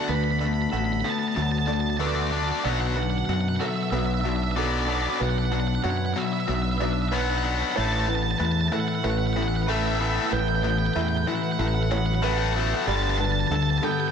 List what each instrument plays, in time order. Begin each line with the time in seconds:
Already playing: ambient pad D3 B3 F#4, clean electric guitar F#3 B3 D4 A4
0.04 lead electric guitar F#5 B5
0.09 fingered electric bass D2, distorted electric guitar D3 A3, clean electric guitar D3, felt piano B4
0.15 lead electric guitar B5
0.24 lead electric guitar B5
0.31 lead electric guitar B5
0.39 distorted electric guitar D3 A3, clean electric guitar D4, lead electric guitar B5
0.47 lead electric guitar B5
0.54 lead electric guitar B5
0.62 lead electric guitar B5
0.70 fingered electric bass A1, distorted electric guitar D3 A3, clean electric guitar A4, felt piano F#5, lead electric guitar B5
0.77 lead electric guitar B5
0.85 lead electric guitar B5
0.93 lead electric guitar B5
1.01 distorted electric guitar D3, clean electric guitar B3, lead electric guitar A5 B5
1.05 distorted electric guitar A3
1.12 lead electric guitar A5
1.19 lead electric guitar A5
1.28 lead electric guitar A5
1.35 fingered electric bass D2, distorted electric guitar D3 A3, clean electric guitar F#3, lead electric guitar A5
1.42 lead electric guitar A5
1.52 lead electric guitar A5
1.59 lead electric guitar A5
1.66 distorted electric guitar D3 A3, clean electric guitar D4, felt piano D5, lead electric guitar A5
1.74 lead electric guitar A5
1.81 lead electric guitar A5
1.90 lead electric guitar A5
1.97 distorted electric guitar D3 A3 D4, clean electric guitar A4, felt piano B4, lead electric guitar D5 A5
2.07 lead electric guitar D5
2.15 lead electric guitar D5
2.22 lead electric guitar D5
2.31 distorted electric guitar D3 A3 D4, clean electric guitar D4, lead electric guitar D5
2.37 lead electric guitar D5
2.44 lead electric guitar D5
2.52 lead electric guitar D5
2.60 distorted electric guitar B2, ambient pad D4 B4, lead electric guitar D5
2.64 fingered electric bass B1, clean electric guitar B2, distorted electric guitar F#3 B3, felt piano D5, lead electric guitar F#5
2.73 lead electric guitar F#5
2.81 lead electric guitar F#5
2.87 lead electric guitar F#5
2.96 distorted electric guitar B2 F#3, clean electric guitar D4, felt piano B4, lead electric guitar F#5
3.03 lead electric guitar F#5
3.10 lead electric guitar F#5
3.18 lead electric guitar F#5
3.25 fingered electric bass F#2, distorted electric guitar B2 F#3, lead electric guitar F#5
3.33 lead electric guitar F#5
3.41 lead electric guitar F#5
3.49 lead electric guitar F#5
3.56 clean electric guitar F#4, felt piano A4, lead electric guitar E5 F#5
3.61 distorted electric guitar B2 F#3
3.68 lead electric guitar E5
3.76 lead electric guitar E5
3.83 lead electric guitar E5
3.91 fingered electric bass B1, distorted electric guitar B2 F#3, clean electric guitar B3, felt piano B4, lead electric guitar E5
3.99 lead electric guitar E5
4.06 lead electric guitar E5
4.14 lead electric guitar E5
4.21 clean electric guitar D4, lead electric guitar E5
4.25 distorted electric guitar B2 F#3, lead electric guitar E5
4.36 lead electric guitar E5
4.44 lead electric guitar E5
4.51 lead electric guitar E5
4.56 distorted electric guitar B2 F#3 B3, felt piano A4, lead electric guitar D5
4.64 lead electric guitar D5
4.72 lead electric guitar D5
4.79 lead electric guitar D5
4.86 distorted electric guitar B2 F#3 B3, clean electric guitar D4, lead electric guitar D5
4.95 lead electric guitar D5
5.02 lead electric guitar D5
5.10 lead electric guitar D5
5.20 fingered electric bass B1, clean electric guitar B2, distorted electric guitar B2 F#3, felt piano B4, lead electric guitar F#5
5.29 lead electric guitar F#5
5.38 lead electric guitar F#5
5.45 lead electric guitar F#5
5.52 distorted electric guitar B2 F#3, clean electric guitar D4, lead electric guitar F#5
5.60 lead electric guitar F#5
5.68 lead electric guitar F#5
5.75 lead electric guitar F#5
5.84 fingered electric bass F#2, distorted electric guitar B2 F#3, clean electric guitar C#5, lead electric guitar F#5, felt piano F#5
5.90 lead electric guitar F#5
5.98 lead electric guitar F#5
6.06 lead electric guitar F#5
6.14 distorted electric guitar B2 F#3, clean electric guitar F#4, lead electric guitar E5 F#5
6.27 lead electric guitar E5
6.33 lead electric guitar E5
6.40 lead electric guitar E5
6.48 fingered electric bass B1, distorted electric guitar B2 F#3, clean electric guitar B3, lead electric guitar E5
6.56 lead electric guitar E5
6.62 lead electric guitar E5
6.71 lead electric guitar E5
6.78 distorted electric guitar B2 F#3, clean electric guitar D4, felt piano D5, lead electric guitar E5
6.85 lead electric guitar E5
6.93 lead electric guitar E5
7.02 lead electric guitar E5
7.09 distorted electric guitar B2 F#3, felt piano B4, lead electric guitar E5
7.13 distorted electric guitar B3, clean electric guitar C#5, lead electric guitar F#5
7.21 lead electric guitar F#5
7.30 lead electric guitar F#5
7.38 lead electric guitar F#5
7.43 distorted electric guitar B2 F#3 B3, clean electric guitar D4, lead electric guitar F#5
7.55 lead electric guitar F#5
7.62 lead electric guitar F#5
7.72 distorted electric guitar A2, ambient pad B4, lead electric guitar F#5
7.76 fingered electric bass A1, clean electric guitar A2, distorted electric guitar E3 A3, ambient pad A3 E4, felt piano C#5, lead electric guitar A5
7.85 lead electric guitar A5
7.92 lead electric guitar A5
8.00 lead electric guitar A5
8.06 distorted electric guitar A2 E3, clean electric guitar B3, felt piano B4, lead electric guitar A5
8.15 lead electric guitar A5
8.23 lead electric guitar A5
8.31 lead electric guitar A5
8.39 fingered electric bass E2, distorted electric guitar A2 E3, clean electric guitar B4, lead electric guitar A5
8.45 lead electric guitar A5
8.52 lead electric guitar A5
8.61 lead electric guitar A5
8.68 distorted electric guitar A2 E3, clean electric guitar E4, felt piano A4, lead electric guitar A5
8.73 lead electric guitar F#5
8.80 lead electric guitar F#5
8.88 lead electric guitar F#5
8.95 lead electric guitar F#5
9.03 fingered electric bass A1, distorted electric guitar A2 E3, clean electric guitar A3, felt piano B4, lead electric guitar F#5
9.10 lead electric guitar F#5
9.18 lead electric guitar F#5
9.27 lead electric guitar F#5
9.33 distorted electric guitar A2 E3, clean electric guitar B3, lead electric guitar F#5
9.43 lead electric guitar F#5
9.48 lead electric guitar F#5
9.56 lead electric guitar F#5
9.63 lead electric guitar F#5
9.67 distorted electric guitar A2 E3 A3, felt piano A4, clean electric guitar B4, lead electric guitar E5
9.76 lead electric guitar E5
9.86 lead electric guitar E5
9.95 lead electric guitar E5
10.00 distorted electric guitar A2 E3 A3, clean electric guitar B3, lead electric guitar E5
10.10 lead electric guitar E5
10.19 lead electric guitar E5
10.26 lead electric guitar E5
10.31 fingered electric bass A1, clean electric guitar A2, distorted electric guitar A2 E3, ambient pad F#3, felt piano B4, lead electric guitar G5
10.39 lead electric guitar G5
10.48 lead electric guitar G5
10.55 lead electric guitar G5
10.63 distorted electric guitar A2 E3, clean electric guitar B3, lead electric guitar G5
10.70 lead electric guitar G5
10.79 lead electric guitar G5
10.86 lead electric guitar G5
10.94 fingered electric bass E2, distorted electric guitar A2 E3, clean electric guitar B4, felt piano E5, lead electric guitar G5
11.01 lead electric guitar G5
11.09 lead electric guitar G5
11.17 lead electric guitar G5
11.27 distorted electric guitar A2 E3, clean electric guitar E4, lead electric guitar F#5
11.35 lead electric guitar F#5
11.43 lead electric guitar F#5
11.52 lead electric guitar F#5
11.59 fingered electric bass A1, distorted electric guitar A2 E3, clean electric guitar A3, lead electric guitar F#5
11.68 lead electric guitar F#5
11.75 lead electric guitar F#5
11.83 lead electric guitar F#5
11.91 distorted electric guitar A2 E3, clean electric guitar B3, felt piano C#5, lead electric guitar F#5
11.98 lead electric guitar F#5
12.06 lead electric guitar F#5
12.15 lead electric guitar F#5
12.22 distorted electric guitar A2 E3 A3, felt piano B4, clean electric guitar B4, lead electric guitar F#5
12.31 lead electric guitar F#5
12.38 lead electric guitar F#5
12.46 lead electric guitar F#5
12.53 distorted electric guitar A2 E3 A3, clean electric guitar B3, lead electric guitar F#5
12.60 lead electric guitar F#5
12.67 lead electric guitar F#5
12.74 lead electric guitar F#5
12.82 lead electric guitar F#5
12.86 fingered electric bass G1, distorted electric guitar G2 D3 G3, clean electric guitar G3, ambient pad B3 G4 A4, felt piano D5, lead electric guitar A5
12.96 lead electric guitar A5
13.03 lead electric guitar A5
13.10 lead electric guitar A5
13.18 distorted electric guitar G2 D3, clean electric guitar D4, felt piano B4, lead electric guitar A5
13.25 lead electric guitar A5
13.32 lead electric guitar A5
13.40 lead electric guitar A5
13.48 fingered electric bass D2, clean electric guitar A4, lead electric guitar A5
13.52 distorted electric guitar G2 D3, lead electric guitar A5
13.63 lead electric guitar A5
13.70 lead electric guitar A5
13.78 lead electric guitar A5
13.82 distorted electric guitar G2 D3, clean electric guitar B3, felt piano A4, lead electric guitar G5
13.92 lead electric guitar G5
14.00 lead electric guitar G5
14.08 lead electric guitar G5